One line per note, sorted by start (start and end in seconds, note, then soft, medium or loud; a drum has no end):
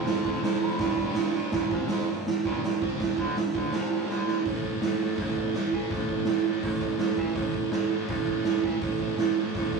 0.00 0.41 F2 loud
0.00 0.43 C3 loud
0.00 0.44 F3 loud
0.04 0.20 F2 medium
0.04 0.42 A5 medium
0.04 snare loud
0.04 open hi-hat medium
0.25 0.40 F2 loud
0.25 kick medium
0.42 0.58 F2 medium
0.42 0.77 F2 medium
0.42 0.78 C3 medium
0.42 0.80 F3 medium
0.42 0.57 A5 loud
0.42 snare loud
0.42 open hi-hat medium
0.58 0.76 F2 medium
0.58 1.29 B5 loud
0.77 1.32 G2 medium
0.77 0.95 G2 loud
0.77 1.33 D3 loud
0.77 1.32 G3 loud
0.77 kick loud
0.77 snare loud
0.77 open hi-hat medium
0.97 1.13 G2 medium
0.97 kick medium
1.15 1.31 G2 medium
1.15 snare loud
1.15 open hi-hat medium
1.34 1.50 G2 medium
1.34 1.52 G2 medium
1.34 1.52 D3 medium
1.34 1.51 G3 loud
1.52 1.70 G2 medium
1.52 1.71 G2 medium
1.52 1.71 D3 medium
1.52 1.70 G3 loud
1.52 kick loud
1.52 snare loud
1.52 open hi-hat medium
1.71 1.88 C2 loud
1.71 1.88 C3 medium
1.71 1.89 G3 medium
1.71 1.88 C4 medium
1.71 kick loud
1.88 2.07 F2 medium
1.88 2.07 F3 medium
1.88 2.07 C4 medium
1.88 2.07 F4 loud
1.88 snare loud
1.88 open hi-hat medium
2.09 2.23 G2 medium
2.09 2.25 G2 medium
2.09 2.23 D3 medium
2.27 snare loud
2.27 open hi-hat medium
2.44 2.62 G2 medium
2.44 2.62 G2 loud
2.44 2.62 D3 medium
2.44 2.63 G3 loud
2.44 kick loud
2.63 2.77 G2 medium
2.63 2.80 G2 medium
2.63 2.78 D3 medium
2.63 snare loud
2.63 open hi-hat medium
2.81 3.17 C3 loud
2.81 3.17 G3 loud
2.81 3.18 C4 loud
2.81 kick loud
3.00 kick loud
3.00 snare loud
3.00 open hi-hat medium
3.18 3.35 D2 loud
3.18 3.35 D3 medium
3.18 3.36 A3 medium
3.18 3.35 D4 loud
3.18 kick loud
3.37 3.53 G2 soft
3.37 muted distorted electric guitar stroke medium
3.37 snare loud
3.37 open hi-hat medium
3.54 3.71 D2 medium
3.54 3.71 D3 medium
3.54 3.72 A3 medium
3.54 3.72 D4 loud
3.54 kick loud
3.72 4.07 C2 loud
3.72 4.06 C3 loud
3.72 4.08 G3 loud
3.72 4.07 C4 loud
3.72 snare loud
3.72 open hi-hat medium
4.07 4.47 D2 loud
4.07 4.44 D3 loud
4.07 4.44 A3 loud
4.07 4.44 D4 loud
4.07 snare medium
4.28 snare medium
4.44 4.79 A2 medium
4.44 4.80 A2 medium
4.44 4.65 E3 medium
4.44 4.62 A3 loud
4.44 kick loud
4.44 open hi-hat medium
4.62 4.80 E3 medium
4.62 4.82 A3 medium
4.62 kick medium
4.79 5.16 A2 medium
4.79 5.01 E3 medium
4.79 4.99 A3 medium
4.79 snare loud
4.79 open hi-hat medium
4.84 5.01 A2 medium
4.99 5.19 A2 medium
4.99 5.19 E3 medium
4.99 5.19 A3 medium
5.16 5.53 A2 medium
5.16 5.54 A2 medium
5.16 5.37 E3 loud
5.16 5.34 A3 loud
5.16 kick loud
5.16 open hi-hat medium
5.35 5.54 E3 medium
5.35 5.57 A3 medium
5.35 kick medium
5.53 5.89 A2 medium
5.53 5.73 A2 medium
5.53 5.92 E3 medium
5.53 5.93 A3 medium
5.53 snare loud
5.53 open hi-hat soft
5.73 5.90 E3 medium
5.73 kick medium
5.90 6.26 A2 medium
5.90 6.25 A2 loud
5.90 6.10 E3 loud
5.90 6.07 A3 loud
5.90 kick loud
5.90 open hi-hat medium
6.08 6.28 E3 medium
6.08 6.29 A3 medium
6.08 kick medium
6.25 6.63 A2 medium
6.25 6.45 A2 medium
6.25 6.47 E3 medium
6.25 snare loud
6.25 open hi-hat medium
6.30 6.45 A3 medium
6.45 6.63 A2 medium
6.45 6.65 E3 medium
6.45 6.66 A3 medium
6.63 7.00 A2 medium
6.63 6.97 A2 medium
6.63 6.82 E3 loud
6.63 6.79 A3 loud
6.63 kick loud
6.63 open hi-hat medium
6.80 7.01 E3 medium
6.80 7.03 A3 medium
6.80 kick medium
6.98 7.17 A2 medium
6.98 7.34 A2 medium
6.98 7.36 E3 medium
6.98 snare loud
6.98 open hi-hat medium
7.03 7.36 A3 medium
7.18 7.36 E3 medium
7.18 kick medium
7.35 7.70 A2 loud
7.35 7.70 A2 medium
7.35 7.55 E3 loud
7.35 7.53 A3 loud
7.35 kick loud
7.35 open hi-hat medium
7.53 7.72 E3 medium
7.53 7.74 A3 medium
7.53 kick medium
7.70 8.07 A2 medium
7.70 7.89 A2 medium
7.70 7.93 E3 medium
7.70 7.89 A3 medium
7.70 snare loud
7.70 open hi-hat medium
7.89 8.08 A2 medium
7.89 8.08 E3 medium
7.89 8.09 A3 medium
8.07 8.43 A2 loud
8.07 8.44 A2 loud
8.07 8.27 E3 medium
8.07 8.24 A3 loud
8.07 kick loud
8.07 open hi-hat medium
8.25 8.44 E3 medium
8.25 8.45 A3 medium
8.25 kick medium
8.43 8.78 A2 medium
8.43 8.64 A2 medium
8.43 8.80 E3 medium
8.43 8.81 A3 loud
8.43 snare loud
8.43 open hi-hat medium
8.64 8.81 E3 medium
8.64 kick medium
8.78 9.15 A2 medium
8.78 9.17 A2 medium
8.78 9.02 E3 loud
8.78 8.99 A3 loud
8.78 kick loud
8.78 open hi-hat medium
8.99 9.16 E3 medium
8.99 9.18 A3 medium
8.99 kick medium
9.15 9.54 A2 medium
9.15 9.38 E3 medium
9.15 9.36 A3 medium
9.15 snare loud
9.15 open hi-hat medium
9.19 9.36 A2 medium
9.36 9.55 A2 medium
9.36 9.56 E3 medium
9.36 9.56 A3 medium
9.54 9.80 A2 loud
9.54 9.80 A2 medium
9.54 9.76 E3 loud
9.54 9.73 A3 loud
9.54 kick loud
9.54 open hi-hat medium
9.73 9.80 E3 medium
9.73 9.80 A3 medium
9.73 kick medium